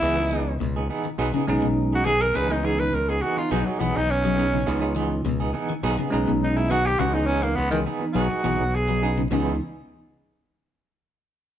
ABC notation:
X:1
M:4/4
L:1/16
Q:"Swing 16ths" 1/4=103
K:C#m
V:1 name="Tenor saxophone"
E4 z8 z F G ^A | B D G B ^A G F ^E D F, B, D C4- | C2 z8 z2 D E F =G | F D C ^A, B, D, z2 F4 G3 z |
z16 |]
V:2 name="Clean electric guitar"
[E,B,G] [B,DG] [E,B,DG] z2 [B,DG] [E,B,DG] z [F,B,DG] [B,DG] [B,DG] z2 [B,DG] [F,B,DG] z | [E,B,DG] [B,DG] [E,B,DG] z2 [B,DG] [E,B,DG] z [F,B,DG] [DG] [F,B,DG] z2 [B,DG] [F,B,DG] z | [E,B,DG] [B,DG] [E,B,DG] z2 [B,DG] [E,B,DG] z [F,B,DG] [B,D] [F,B,DG] z2 [B,DG] [F,B,DG] z | [E,DG] [DG] [E,B,DG] z2 [B,G] [E,B,DG] z [F,B,DG] [B,DG] [F,B,DG] z2 [B,DG] [F,B,DG] z |
[E,B,DG]2 z12 z2 |]
V:3 name="Tine electric piano"
[E,B,d]4 z4 z [CD] [G,CD]4 z2 | z [E,B,D]3 z3 [E,B,D] z6 [CD] [CD] | [E,B,D]4 z4 z [CD] [G,CD]4 z2 | z [E,B,D]3 z3 [E,B,D] z6 [CD] [CD] |
[E,B,D]2 z12 z2 |]
V:4 name="Clean electric guitar" clef=bass
z2 D,2 B,,2 z D,2 C,2 B,,2 z D,2 | z3 D,2 z3 F,2 E,2 z F,2 C, | z2 D,2 B,,2 z D,2 C,2 B,,2 z D,2 | C,2 z3 E,2 z F,2 E,2 z F,2 C, |
C,2 z12 z2 |]
V:5 name="Fingered electric bass" clef=bass
C,,4 C,,2 z2 B,,, z B,,, B,,,4- B,,, | C,,4 C,,2 z2 B,,, z B,,, B,,,4- B,,, | C,,4 C,,2 z2 B,,, z B,,, B,,,4- B,,, | C,,4 C,,2 z2 B,,, z B,,, B,,,4- B,,, |
C,,2 z12 z2 |]